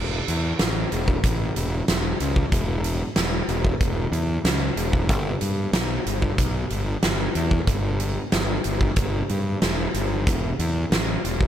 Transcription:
0.00 0.20 E1 medium
0.28 0.52 E2 medium
0.28 closed hi-hat medium
0.59 0.84 A1 medium
0.59 snare loud
0.59 closed hi-hat medium
0.92 1.16 E1 medium
0.92 closed hi-hat medium
1.08 kick medium
1.24 1.48 A1 medium
1.24 kick loud
1.24 closed hi-hat medium
1.56 1.80 E1 medium
1.56 closed hi-hat medium
1.88 2.13 E1 medium
1.88 snare loud
1.88 closed hi-hat medium
2.20 2.45 C#2 medium
2.20 closed hi-hat medium
2.36 kick medium
2.52 3.01 E1 medium
2.52 kick medium
2.52 closed hi-hat medium
2.84 closed hi-hat medium
3.16 3.41 E1 medium
3.16 snare loud
3.16 closed hi-hat medium
3.48 3.73 E1 medium
3.48 closed hi-hat medium
3.65 kick medium
3.81 4.05 E1 medium
3.81 kick loud
3.81 closed hi-hat medium
4.12 4.36 E2 medium
4.12 closed hi-hat soft
4.44 4.69 C#2 medium
4.44 snare loud
4.44 closed hi-hat medium
4.76 5.09 E1 medium
4.76 closed hi-hat medium
4.93 kick medium
5.09 5.34 G1 medium
5.09 kick loud
5.09 closed hi-hat medium
5.41 5.66 G2 medium
5.41 closed hi-hat medium
5.73 5.98 B1 medium
5.73 snare loud
5.73 closed hi-hat medium
6.06 6.31 G1 medium
6.06 closed hi-hat medium
6.22 kick medium
6.38 6.63 B1 medium
6.38 kick medium
6.38 closed hi-hat medium
6.70 6.95 G1 medium
6.70 closed hi-hat medium
7.03 7.27 G1 medium
7.03 snare loud
7.03 closed hi-hat medium
7.35 7.60 E2 medium
7.35 closed hi-hat medium
7.51 kick medium
7.67 8.16 G1 medium
7.67 kick loud
7.67 closed hi-hat medium
8.00 closed hi-hat medium
8.32 8.57 G1 medium
8.32 snare loud
8.32 closed hi-hat medium
8.64 8.90 G1 medium
8.64 closed hi-hat medium
8.81 kick medium
8.96 9.21 G1 medium
8.96 kick loud
8.96 closed hi-hat medium
9.29 9.54 G2 medium
9.29 closed hi-hat soft
9.62 9.86 E1 medium
9.62 snare medium
9.62 closed hi-hat medium
9.94 10.27 G1 medium
9.94 closed hi-hat medium
10.27 10.51 E1 medium
10.27 kick loud
10.27 closed hi-hat medium
10.59 10.84 E2 medium
10.59 closed hi-hat medium
10.91 11.16 A1 medium
10.91 snare loud
10.91 closed hi-hat medium
11.24 11.47 E1 medium
11.24 closed hi-hat medium
11.41 kick medium

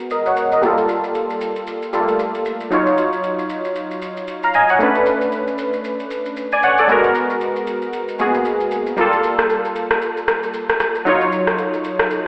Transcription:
0.00 0.58 G#3 medium
0.00 0.59 B3 medium
0.00 0.59 F#4 medium
0.00 0.11 A#4 medium
0.10 0.26 A#4 medium
0.10 0.25 D#5 medium
0.10 shaker medium
0.26 0.51 C#5 medium
0.26 0.51 F#5 medium
0.26 shaker soft
0.37 shaker medium
0.52 0.77 A#4 medium
0.52 0.77 D#5 medium
0.52 shaker medium
0.62 1.90 G3 medium
0.62 1.91 A#3 medium
0.62 1.91 F4 medium
0.62 shaker medium
0.66 1.92 A4 medium
0.78 shaker medium
0.89 shaker medium
1.04 shaker soft
1.15 shaker medium
1.30 shaker soft
1.41 shaker medium
1.56 shaker soft
1.67 shaker medium
1.82 shaker soft
1.93 2.71 G3 medium
1.93 2.01 A3 soft
1.93 2.72 F4 soft
1.93 2.72 A4 medium
1.93 shaker medium
2.00 2.75 A#3 soft
2.08 shaker medium
2.19 shaker medium
2.35 shaker soft
2.45 shaker medium
2.61 shaker medium
2.70 4.76 F#3 medium
2.70 4.76 D#4 medium
2.70 4.77 F4 medium
2.70 shaker medium
2.74 4.26 C#5 medium
2.87 shaker medium
2.98 shaker medium
3.13 shaker medium
3.24 shaker medium
3.39 shaker soft
3.50 shaker medium
3.65 shaker soft
3.76 shaker medium
3.91 shaker soft
4.02 shaker medium
4.17 shaker soft
4.28 shaker medium
4.43 4.54 F5 medium
4.43 4.54 A#5 medium
4.43 shaker medium
4.54 4.69 D#5 medium
4.54 4.69 G#5 medium
4.54 shaker medium
4.69 4.95 C#5 medium
4.69 4.94 F#5 medium
4.69 shaker medium
4.79 6.84 A3 medium
4.79 6.85 C#4 medium
4.79 6.86 D4 medium
4.79 6.35 B4 medium
4.79 shaker medium
4.95 shaker medium
5.06 shaker medium
5.21 shaker medium
5.32 shaker medium
5.47 shaker soft
5.58 shaker medium
5.73 shaker soft
5.84 shaker medium
6.00 shaker soft
6.11 shaker medium
6.26 shaker soft
6.37 shaker medium
6.52 6.63 D5 medium
6.52 6.63 G#5 medium
6.52 shaker soft
6.63 6.78 C#5 medium
6.63 6.78 F#5 medium
6.63 shaker medium
6.78 7.03 A4 medium
6.78 7.03 D5 medium
6.78 shaker medium
6.88 8.16 G#3 medium
6.88 8.17 B3 medium
6.88 8.17 F#4 medium
6.88 8.18 A#4 medium
6.88 shaker medium
7.04 shaker medium
7.15 shaker medium
7.30 shaker medium
7.41 shaker medium
7.56 shaker soft
7.67 shaker medium
7.82 shaker soft
7.93 shaker medium
8.08 shaker soft
8.19 8.98 G#3 medium
8.19 8.27 A#3 soft
8.19 8.98 F#4 soft
8.19 8.98 G#4 medium
8.19 shaker medium
8.26 9.01 B3 medium
8.34 shaker soft
8.45 shaker medium
8.61 shaker soft
8.71 shaker loud
8.87 shaker medium
8.96 11.02 G3 medium
8.96 11.02 A#3 medium
8.96 11.03 F4 medium
8.96 shaker medium
9.01 11.04 A4 medium
9.13 shaker medium
9.24 shaker medium
9.39 cross-stick medium
9.39 shaker medium
9.50 shaker medium
9.65 shaker soft
9.76 shaker medium
9.91 cross-stick loud
9.91 shaker soft
10.02 shaker medium
10.17 shaker soft
10.28 cross-stick medium
10.28 shaker medium
10.43 shaker soft
10.54 shaker medium
10.69 cross-stick medium
10.69 shaker soft
10.80 cross-stick medium
10.80 shaker medium
10.95 shaker medium
11.05 12.27 F#3 medium
11.05 12.27 D#4 medium
11.05 12.27 F4 medium
11.05 shaker medium
11.09 12.27 C#5 medium
11.21 shaker medium
11.32 shaker medium
11.47 cross-stick medium
11.47 shaker medium
11.58 shaker medium
11.74 shaker soft
11.84 shaker medium
11.99 cross-stick loud
11.99 shaker soft
12.10 shaker medium

